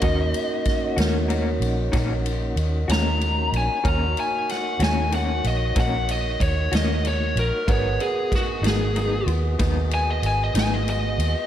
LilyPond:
<<
  \new Staff \with { instrumentName = "Lead electric guitar" } { \time 12/8 \key ees \minor \tempo 4. = 63 ees''4. r2. bes''4 aes''8 | bes''8 aes''8 ges''8 aes''8 ges''8 ees''8 ges''8 ees''8 des''8 ees''8 des''8 bes'8 | des''8 aes'8 ges'8 aes'4 r4 aes''16 ees''16 aes''16 ees''16 aes''16 ees''16 ees''4 | }
  \new Staff \with { instrumentName = "Tine electric piano" } { \time 12/8 \key ees \minor <ges' des'' ees''>1. | <ges' des'' f'''>1. | <bes' ces'' ges''>1. | }
  \new Staff \with { instrumentName = "Tonewheel organ" } { \time 12/8 \key ees \minor <bes des' ees' ges'>1. | <bes ees' ges' des''>1. | <ces' ges' aes' ees''>1. | }
  \new Staff \with { instrumentName = "Clean electric guitar" } { \time 12/8 \key ees \minor <ees bes des' ges'>8 r4 <bes des' ges'>8 <ees bes des' ges'>8 r8 <ees bes des' ges'>8 r4 <bes des' ges'>8 r4 | <ees bes des' ges'>8 r4 <bes des' ges'>8 <ees bes des' ges'>8 r8 <ees bes des' ges'>8 r4 <bes des' ges'>8 r4 | <aes, ges ces' ees'>8 r4 <ges ces' ees'>8 <aes, ges ces' ees'>8 r8 <aes, ges ces' ees'>8 r4 <ges ces' ees'>8 r4 | }
  \new Staff \with { instrumentName = "Fingered electric bass" } { \clef bass \time 12/8 \key ees \minor ees,8 r4 ees,4 bes,,8 bes,,4 ees,8 ees,4 bes,,16 r16 | ees,8 r4 ees,4 bes,,8 bes,,4 ees,8 ees,4 bes,,16 r16 | aes,,8 r4 aes,,4 ees,8 ees,4 aes,,8 aes,,4 ees,16 r16 | }
  \new DrumStaff \with { instrumentName = "Drums" } \drummode { \time 12/8 <bd cymr>8 cymr8 <bd cymr sn>8 <cymr sn>8 cymr8 cymr8 <bd cymr sn>8 cymr8 cymr8 <cymr sn>8 cymr8 cymr8 | <bd cymr>8 cymr8 <cymr sn>8 <cymr sn>8 cymr8 cymr8 <bd cymr sn>8 cymr8 <bd cymr>8 <cymr sn>8 cymr8 cymr8 | <bd cymr>8 cymr8 <bd cymr sn>8 <cymr sn>8 cymr8 cymr8 <bd cymr sn>8 cymr8 cymr8 <cymr sn>8 cymr8 cymr8 | }
>>